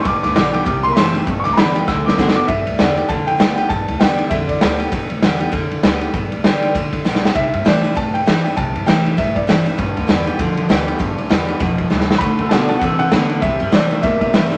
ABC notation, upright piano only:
X:1
M:4/4
L:1/8
Q:"Swing" 1/4=197
K:Gmix
V:1 name="Upright piano"
[^c'd'] d' d' d' d' =c' [bc']2 | z [^c'd'] [_b=b]2 e' d'2 d' | e2 d d a g2 g | a2 g2 e d2 z |
z8 | z8 | e2 d2 a g2 g | a2 g2 e d2 z |
z8 | z8 | b2 a a ^f f3 | e2 d2 e e2 z |]